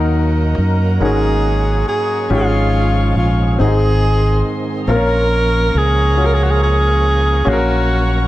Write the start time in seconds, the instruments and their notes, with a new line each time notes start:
Already playing: fingered electric bass D#2, grand piano D#3 D#4 F#4 A#4, tonewheel organ F#3 A#3 D#4 A#4, string section A#4 D#5 F#5 A#5
0.58 fingered electric bass F#2
1.00 fingered electric bass G#1, grand piano G#2 G#3 C#4 D#4 F#4 A#4, tonewheel organ F#3 A#3 C#4 G#4, alto saxophone G#4, string section C#5 G#5
1.88 alto saxophone G#4
2.29 fingered electric bass G#1, grand piano G#2 C#4 F4 G4, tonewheel organ F3 G#3 C#4 G#4, alto saxophone F4, string section F5 C#6
2.38 grand piano G#4
3.16 fingered electric bass A#1, alto saxophone F4
3.58 fingered electric bass G#1, grand piano G#2 C4 D#4 F#4, tonewheel organ D#3 G#3 C4 G#4, alto saxophone G#4, string section C5 D#5 C6
3.67 grand piano G#4
4.87 fingered electric bass A#1, grand piano A#2 C4 F4 A#4, tonewheel organ F3 A#3 C#4 A#4, alto saxophone A#4, string section C#5 F5 A#5 C#6
4.94 grand piano C#4
5.75 fingered electric bass C#2, alto saxophone G#4
6.16 grand piano C#4 F4 F#4
6.24 grand piano G#4, alto saxophone A#4
6.33 alto saxophone G#4
6.43 alto saxophone F#4
6.51 alto saxophone G#4
6.63 alto saxophone G#4
7.44 fingered electric bass A#1, grand piano A#2 C#4 F#4 G#4, tonewheel organ F#3 A#3 C#4 A#4, string section C#5 F#5 A#5 C#6
7.49 alto saxophone F#4, grand piano A#4